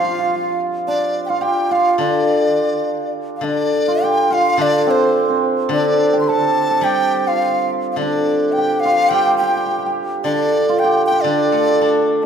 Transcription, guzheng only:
0, 0, Header, 1, 2, 480
1, 0, Start_track
1, 0, Tempo, 568182
1, 24, Time_signature, 2, 2, 24, 8
1, 10355, End_track
2, 0, Start_track
2, 0, Title_t, "Guzheng"
2, 0, Program_c, 0, 107
2, 0, Note_on_c, 0, 53, 46
2, 1210, Note_off_c, 0, 53, 0
2, 1674, Note_on_c, 0, 50, 50
2, 2870, Note_off_c, 0, 50, 0
2, 2881, Note_on_c, 0, 50, 47
2, 3854, Note_off_c, 0, 50, 0
2, 3864, Note_on_c, 0, 50, 51
2, 4796, Note_off_c, 0, 50, 0
2, 4806, Note_on_c, 0, 50, 55
2, 5755, Note_on_c, 0, 55, 56
2, 6252, Note_off_c, 0, 50, 0
2, 6727, Note_on_c, 0, 50, 48
2, 7221, Note_off_c, 0, 55, 0
2, 7691, Note_on_c, 0, 55, 54
2, 8175, Note_off_c, 0, 50, 0
2, 8652, Note_on_c, 0, 50, 52
2, 9127, Note_off_c, 0, 55, 0
2, 9486, Note_off_c, 0, 50, 0
2, 9496, Note_on_c, 0, 50, 54
2, 9734, Note_on_c, 0, 57, 41
2, 9980, Note_on_c, 0, 62, 46
2, 10355, Note_off_c, 0, 50, 0
2, 10355, Note_off_c, 0, 57, 0
2, 10355, Note_off_c, 0, 62, 0
2, 10355, End_track
0, 0, End_of_file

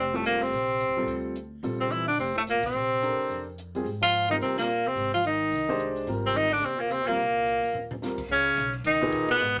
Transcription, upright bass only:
0, 0, Header, 1, 3, 480
1, 0, Start_track
1, 0, Tempo, 277521
1, 908, Time_signature, 4, 2, 24, 8
1, 16604, End_track
2, 0, Start_track
2, 0, Title_t, "Upright bass"
2, 0, Program_c, 0, 32
2, 0, Note_on_c, 0, 29, 77
2, 851, Note_off_c, 0, 29, 0
2, 886, Note_on_c, 0, 34, 76
2, 1491, Note_off_c, 0, 34, 0
2, 1527, Note_on_c, 0, 36, 53
2, 1685, Note_off_c, 0, 36, 0
2, 1694, Note_on_c, 0, 33, 65
2, 1822, Note_off_c, 0, 33, 0
2, 1833, Note_on_c, 0, 38, 74
2, 2761, Note_off_c, 0, 38, 0
2, 2812, Note_on_c, 0, 34, 72
2, 3731, Note_off_c, 0, 34, 0
2, 3769, Note_on_c, 0, 29, 70
2, 4373, Note_off_c, 0, 29, 0
2, 4423, Note_on_c, 0, 34, 66
2, 4562, Note_off_c, 0, 34, 0
2, 4573, Note_on_c, 0, 33, 70
2, 4723, Note_off_c, 0, 33, 0
2, 4733, Note_on_c, 0, 34, 73
2, 5451, Note_off_c, 0, 34, 0
2, 5697, Note_on_c, 0, 41, 67
2, 6614, Note_off_c, 0, 41, 0
2, 6650, Note_on_c, 0, 44, 75
2, 7570, Note_off_c, 0, 44, 0
2, 7612, Note_on_c, 0, 39, 73
2, 8531, Note_off_c, 0, 39, 0
2, 8569, Note_on_c, 0, 32, 78
2, 9490, Note_off_c, 0, 32, 0
2, 9526, Note_on_c, 0, 36, 67
2, 10449, Note_off_c, 0, 36, 0
2, 10500, Note_on_c, 0, 32, 79
2, 11416, Note_off_c, 0, 32, 0
2, 11448, Note_on_c, 0, 39, 76
2, 12370, Note_off_c, 0, 39, 0
2, 12401, Note_on_c, 0, 36, 76
2, 13124, Note_off_c, 0, 36, 0
2, 13177, Note_on_c, 0, 39, 60
2, 13363, Note_off_c, 0, 39, 0
2, 13373, Note_on_c, 0, 39, 73
2, 14292, Note_off_c, 0, 39, 0
2, 14329, Note_on_c, 0, 37, 82
2, 14804, Note_off_c, 0, 37, 0
2, 14817, Note_on_c, 0, 35, 84
2, 15278, Note_off_c, 0, 35, 0
2, 15288, Note_on_c, 0, 37, 78
2, 15758, Note_off_c, 0, 37, 0
2, 15768, Note_on_c, 0, 39, 83
2, 16041, Note_off_c, 0, 39, 0
2, 16250, Note_on_c, 0, 32, 77
2, 16604, Note_off_c, 0, 32, 0
2, 16604, End_track
3, 0, Start_track
3, 0, Title_t, "Muted upright bass strokes"
3, 5500, Note_on_c, 9, 29, 36
3, 5673, Note_off_c, 9, 29, 0
3, 16054, Note_on_c, 9, 29, 41
3, 16227, Note_off_c, 9, 29, 0
3, 16604, End_track
0, 0, End_of_file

